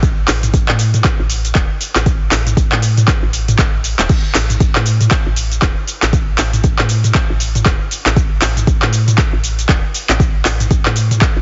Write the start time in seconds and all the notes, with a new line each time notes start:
Already playing: A1
0.03 kick, closed hi-hat, shaker
0.28 A1, clap, open hi-hat, shaker
0.43 closed hi-hat, mid tom, shaker
0.54 kick, closed hi-hat, shaker
0.68 A2, clap
0.79 open hi-hat, shaker
0.94 closed hi-hat, mid tom, shaker
1.04 kick, clap, closed hi-hat, shaker
1.19 A1
1.30 open hi-hat, shaker
1.45 closed hi-hat, shaker
1.55 E1, kick, clap, closed hi-hat, shaker
1.81 open hi-hat, shaker
1.96 A1, clap, closed hi-hat, shaker
2.06 kick, closed hi-hat, shaker
2.31 A1, clap, open hi-hat, shaker
2.47 closed hi-hat, mid tom, shaker
2.57 kick, closed hi-hat, shaker
2.72 A2, clap
2.82 open hi-hat, shaker
2.97 closed hi-hat, mid tom, shaker
3.08 kick, clap, closed hi-hat, shaker
3.23 A1
3.33 open hi-hat, shaker
3.48 closed hi-hat, mid tom, shaker
3.59 A1, kick, clap, closed hi-hat, shaker
3.84 open hi-hat, shaker
3.99 E1, clap, closed hi-hat, shaker
4.09 kick, closed hi-hat, crash, shaker
4.35 A1, clap, open hi-hat, shaker
4.50 closed hi-hat, mid tom, shaker
4.60 kick, closed hi-hat, shaker
4.75 A2, clap
4.86 open hi-hat, shaker
5.01 closed hi-hat, mid tom, shaker
5.11 kick, clap, closed hi-hat, shaker
5.26 A1
5.36 open hi-hat, shaker
5.52 closed hi-hat, shaker
5.62 E1, kick, clap, closed hi-hat, shaker
5.87 open hi-hat, shaker
6.03 A1, clap, closed hi-hat, shaker
6.13 kick, closed hi-hat, shaker
6.38 A1, clap, open hi-hat, shaker
6.53 closed hi-hat, mid tom, shaker
6.64 kick, closed hi-hat, shaker
6.79 A2, clap
6.89 open hi-hat, shaker
7.04 closed hi-hat, mid tom, shaker
7.15 kick, clap, closed hi-hat, shaker
7.30 A1
7.40 open hi-hat, shaker
7.55 closed hi-hat, mid tom, shaker
7.66 E1, kick, clap, closed hi-hat, shaker
7.91 open hi-hat, shaker
8.06 A1, clap, closed hi-hat, shaker
8.16 kick, closed hi-hat, shaker
8.42 A1, clap, open hi-hat, shaker
8.57 closed hi-hat, mid tom, shaker
8.67 kick, closed hi-hat, shaker
8.82 A2, clap
8.93 open hi-hat, shaker
9.08 closed hi-hat, mid tom, shaker
9.18 kick, clap, closed hi-hat, shaker
9.33 A1
9.44 open hi-hat, shaker
9.59 closed hi-hat, shaker
9.69 E1, kick, clap, closed hi-hat, shaker
9.94 open hi-hat, shaker
10.09 A1, clap, closed hi-hat, shaker
10.20 kick, closed hi-hat, shaker
10.45 A1, clap, open hi-hat, shaker
10.60 closed hi-hat, mid tom, shaker
10.71 kick, closed hi-hat, shaker
10.86 A2, clap
10.96 open hi-hat, shaker
11.11 closed hi-hat, mid tom, shaker
11.21 kick, clap, closed hi-hat, shaker
11.36 A1